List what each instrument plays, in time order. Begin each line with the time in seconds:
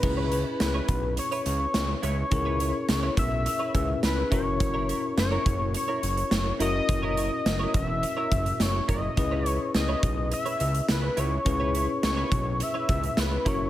Already playing: analog synth lead B4
0.02 analog synth bass C#2, tine electric piano C#4 E4 G#4 B4, muted clean electric guitar stroke, kick, crash
0.17 clean electric guitar E4 B4 C#5
0.31 clean electric guitar E4 B4 C#5, closed hi-hat
0.46 muted clean electric guitar stroke
0.60 analog synth bass C#2, analog synth lead B4, muted clean electric guitar stroke, snare, closed hi-hat
0.74 clean electric guitar E4 B4 C#5
0.88 analog synth bass B1, muted clean electric guitar stroke, kick, closed hi-hat
1.03 muted clean electric guitar stroke
1.17 analog synth lead C#5, muted clean electric guitar stroke, closed hi-hat
1.31 clean electric guitar E4 B4 C#5, closed hi-hat
1.46 analog synth bass C#2, muted clean electric guitar stroke, closed hi-hat
1.60 muted clean electric guitar stroke
1.74 analog synth bass C#2, snare, closed hi-hat
1.88 muted clean electric guitar stroke
2.02 analog synth bass C#2, clean electric guitar E4 B4 C#5, analog synth lead C#5, closed hi-hat
2.17 muted clean electric guitar stroke
2.31 analog synth bass C#2, tine electric piano C#4 E4 G#4 A#4, muted clean electric guitar stroke, kick, closed hi-hat
2.45 clean electric guitar E4 B4 C#5
2.60 clean electric guitar E4 B4 C#5, closed hi-hat
2.74 muted clean electric guitar stroke
2.88 analog synth bass C#2, muted clean electric guitar stroke, snare, closed hi-hat
3.03 clean electric guitar E4 B4 C#5
3.17 analog synth bass B1, analog synth lead E5, muted clean electric guitar stroke, kick, closed hi-hat
3.31 muted clean electric guitar stroke
3.45 muted clean electric guitar stroke, closed hi-hat
3.59 clean electric guitar E4 B4 C#5
3.74 analog synth bass C#2, tine electric piano C#4 E4 G#4 B4, muted clean electric guitar stroke, kick, closed hi-hat
3.88 muted clean electric guitar stroke
4.03 analog synth bass C#2, analog synth lead B4, snare, closed hi-hat
4.17 muted clean electric guitar stroke
4.31 analog synth bass F#1, tine electric piano C#4 E4 F#4 A#4, clean electric guitar E4 A#4 C#5, analog synth lead C#5, kick, closed hi-hat
4.45 muted clean electric guitar stroke
4.60 muted clean electric guitar stroke, kick, closed hi-hat
4.74 clean electric guitar E4 A#4 C#5
4.88 clean electric guitar E4 A#4 C#5, closed hi-hat
5.03 muted clean electric guitar stroke
5.17 analog synth bass F#1, analog synth lead C#5, muted clean electric guitar stroke, snare, closed hi-hat
5.31 clean electric guitar E4 A#4 C#5
5.46 analog synth bass F#1, kick, closed hi-hat
5.60 muted clean electric guitar stroke
5.74 analog synth lead C#5, muted clean electric guitar stroke, closed hi-hat
5.88 clean electric guitar E4 A#4 C#5
6.02 analog synth bass F#1, muted clean electric guitar stroke, closed hi-hat
6.17 muted clean electric guitar stroke, closed hi-hat
6.31 analog synth bass F#1, snare, closed hi-hat
6.46 muted clean electric guitar stroke
6.59 analog synth bass F#1, tine electric piano C#4 E4 F#4 A#4, clean electric guitar E4 A#4 C#5, analog synth lead D#5, closed hi-hat
6.74 muted clean electric guitar stroke
6.88 analog synth bass F#1, muted clean electric guitar stroke, kick, closed hi-hat
7.02 clean electric guitar E4 A#4 C#5
7.16 clean electric guitar E4 A#4 C#5, closed hi-hat
7.31 muted clean electric guitar stroke
7.45 analog synth bass F#1, muted clean electric guitar stroke, snare, closed hi-hat
7.59 clean electric guitar E4 A#4 C#5
7.74 analog synth bass E1, analog synth lead E5, muted clean electric guitar stroke, kick, closed hi-hat
7.88 muted clean electric guitar stroke
8.02 muted clean electric guitar stroke, closed hi-hat
8.17 clean electric guitar E4 A#4 C#5
8.32 analog synth bass F#1, kick, closed hi-hat
8.45 muted clean electric guitar stroke, closed hi-hat
8.60 analog synth bass F#1, analog synth lead C#5, snare, closed hi-hat
8.74 muted clean electric guitar stroke
8.88 analog synth bass F#1, clean electric guitar E4 A#4 C#5, analog synth lead D#5, kick, closed hi-hat
9.03 muted clean electric guitar stroke
9.16 analog synth bass C#2, tine electric piano C#4 E4 G#4 B4, muted clean electric guitar stroke, kick, closed hi-hat
9.31 clean electric guitar E4 B4 C#5
9.46 clean electric guitar E4 B4 C#5, analog synth lead C#5, closed hi-hat
9.60 muted clean electric guitar stroke
9.74 analog synth bass C#2, analog synth lead D#5, muted clean electric guitar stroke, snare, closed hi-hat
9.88 clean electric guitar E4 B4 C#5
10.03 analog synth bass B1, kick, closed hi-hat
10.17 muted clean electric guitar stroke
10.31 analog synth lead E5, muted clean electric guitar stroke, closed hi-hat
10.45 clean electric guitar E4 B4 C#5, closed hi-hat
10.60 analog synth bass C#2, muted clean electric guitar stroke, closed hi-hat
10.74 muted clean electric guitar stroke, closed hi-hat
10.88 analog synth bass C#2, analog synth lead B4, snare, closed hi-hat
11.03 muted clean electric guitar stroke
11.17 analog synth bass C#2, clean electric guitar E4 B4 C#5, analog synth lead C#5, closed hi-hat
11.31 muted clean electric guitar stroke
11.45 analog synth bass C#2, tine electric piano C#4 E4 G#4 B4, muted clean electric guitar stroke, kick, closed hi-hat
11.60 clean electric guitar E4 B4 C#5
11.74 clean electric guitar E4 B4 C#5, closed hi-hat
11.88 muted clean electric guitar stroke
12.03 analog synth bass C#2, analog synth lead C#5, muted clean electric guitar stroke, snare, closed hi-hat
12.17 clean electric guitar E4 B4 C#5
12.32 analog synth bass B1, kick, closed hi-hat
12.45 muted clean electric guitar stroke
12.60 analog synth lead E5, muted clean electric guitar stroke, closed hi-hat
12.74 clean electric guitar E4 B4 C#5
12.88 analog synth bass C#2, muted clean electric guitar stroke, kick, closed hi-hat
13.03 muted clean electric guitar stroke, closed hi-hat
13.17 analog synth bass C#2, analog synth lead B4, snare, closed hi-hat
13.31 muted clean electric guitar stroke
13.45 analog synth bass F#1, tine electric piano C#4 E4 F#4 A#4, clean electric guitar E4 A#4 C#5, analog synth lead C#5, kick, closed hi-hat
13.60 muted clean electric guitar stroke